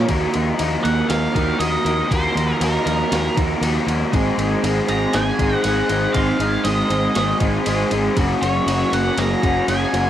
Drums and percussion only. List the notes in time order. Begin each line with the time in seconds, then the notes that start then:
0.08 kick, ride
0.34 ride
0.59 ride
0.85 ride
1.10 snare, ride
1.35 kick, ride
1.60 ride
1.86 ride
2.11 kick, ride
2.37 ride
2.61 ride
2.87 ride
3.12 snare, ride
3.37 kick, ride
3.63 ride
3.88 ride
4.13 kick, ride
4.39 ride
4.64 ride
4.88 ride
5.13 snare, ride
5.39 kick, ride
5.64 ride
5.89 ride
6.14 kick, ride
6.40 ride
6.65 ride
6.91 ride
7.15 snare, ride
7.40 kick, ride
7.66 ride
7.91 ride
8.17 kick, ride
8.43 ride
8.68 ride
8.93 ride
9.18 snare, ride
9.43 kick, ride
9.68 ride
9.94 ride